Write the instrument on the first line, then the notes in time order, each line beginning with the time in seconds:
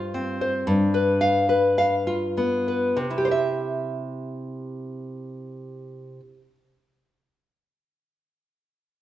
nylon-string guitar
Already playing: G2 F4 C5 F5
0.14 C4
0.41 C5
0.67 G2
0.94 B4
1.21 F5
1.49 B4
1.78 F5
2.07 F4
2.37 B3
2.68 B4
2.96 C3
3.10 E4
3.18 G4
3.25 C5
3.31 E5